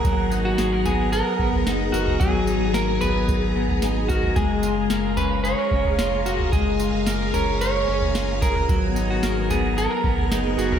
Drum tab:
TB |x-x-x-x-x---x-x-|x-x-x-x-x---x-x-|x-x-x-x-x---x-x-|x-x-x-x-x---x-x-|
SD |----o-------o---|----o-------o---|----o-------o---|----o-------o---|
FT |o-----o----o---o|o-----o-o--o---o|o-----o----o---o|o-----o----o---o|
BD |o---------o-----|o-------o-----o-|o---------o-----|o-------------o-|

TB |x-x-x-x-x---x-x-|
SD |----o-------o---|
FT |o-----o----o---o|
BD |o---------o-----|